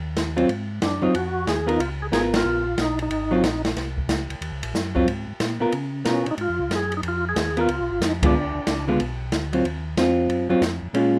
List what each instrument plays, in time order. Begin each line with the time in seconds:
Already playing: tonewheel organ D#2
0.17 snare, hi-hat pedal, ride
0.36 hollow-body jazz guitar F#3 C4 F4, ride
0.49 tonewheel organ G#2, ride
0.82 tonewheel organ F#2 D4, snare, hi-hat pedal, ride
1.02 tonewheel organ F#2 D#4, hollow-body jazz guitar F#3 C4 F4
1.15 tonewheel organ F2 F#4, ride
1.47 tonewheel organ D#2 G#4, snare, hi-hat pedal, ride
1.67 hollow-body jazz guitar B3 F4 A#4, tonewheel organ D#4, ride
1.79 tonewheel organ C#2 F4, ride
2.02 tonewheel organ G#4
2.11 tonewheel organ G#1 G#4, hollow-body jazz guitar B3 F4 A#4, snare, hi-hat pedal, ride
2.34 tonewheel organ F4, snare, ride
2.45 tonewheel organ A#1
2.78 tonewheel organ B1 D#4, snare, hi-hat pedal, ride
2.99 tonewheel organ D#4, ride
3.10 tonewheel organ G#1, ride
3.31 hollow-body jazz guitar F#3 C4 F4
3.43 tonewheel organ A#1, snare, hi-hat pedal, ride
3.65 snare, ride
3.76 tonewheel organ C2, snare, ride
3.98 kick
4.08 tonewheel organ C#2, snare, hi-hat pedal, ride
4.29 tonewheel organ C#2, ride
4.41 tonewheel organ D#2, ride
4.52 tonewheel organ C#2
4.63 tonewheel organ A#1, ride
4.73 tonewheel organ F#2, snare, hi-hat pedal
4.95 hollow-body jazz guitar F#3 C4 F4, kick
5.06 tonewheel organ G#2, ride
5.27 tonewheel organ G#2
5.40 tonewheel organ A#2, snare, hi-hat pedal, ride
5.60 tonewheel organ A#2, hollow-body jazz guitar B3 F4 A#4
5.72 tonewheel organ C#3, ride
6.05 tonewheel organ B2, hollow-body jazz guitar B3 F4 A#4, snare, hi-hat pedal, ride
6.09 tonewheel organ C#4
6.26 tonewheel organ B2, ride
6.31 tonewheel organ D#4
6.37 tonewheel organ G#2, ride
6.41 tonewheel organ F4
6.49 tonewheel organ F2
6.59 tonewheel organ C#2
6.70 tonewheel organ F#2, snare, hi-hat pedal, ride
6.75 tonewheel organ G#4
6.92 ride
6.97 tonewheel organ D#4
7.03 tonewheel organ F2, ride
7.08 tonewheel organ F4
7.29 tonewheel organ G#4
7.36 tonewheel organ D#2, snare, hi-hat pedal, ride
7.57 hollow-body jazz guitar B3 F4 A#4, ride
7.61 tonewheel organ F4
7.69 tonewheel organ C#2, ride
7.80 tonewheel organ B1
7.90 tonewheel organ G#1
8.00 tonewheel organ F2, snare, hi-hat pedal, ride
8.04 tonewheel organ D#4
8.23 hollow-body jazz guitar D3 G#3 B3 F4, tonewheel organ D4, kick, ride
8.33 tonewheel organ D2
8.55 tonewheel organ D2
8.67 tonewheel organ C#2, snare, hi-hat pedal, ride
8.87 hollow-body jazz guitar D3 G#3 B3 F4
9.00 tonewheel organ B1, ride
9.31 tonewheel organ D2, snare, hi-hat pedal, ride
9.53 hollow-body jazz guitar F#3 C4 F4, ride
9.65 tonewheel organ D#2, ride
9.97 tonewheel organ F2, hollow-body jazz guitar C4 F4, snare, hi-hat pedal, ride
10.29 tonewheel organ F#2, ride
10.49 tonewheel organ F#2, hollow-body jazz guitar F#3 C4 F4
10.61 tonewheel organ F2, snare, hi-hat pedal, ride
10.82 tonewheel organ F2
10.93 tonewheel organ A#2, hollow-body jazz guitar G#3 C#4 F4, ride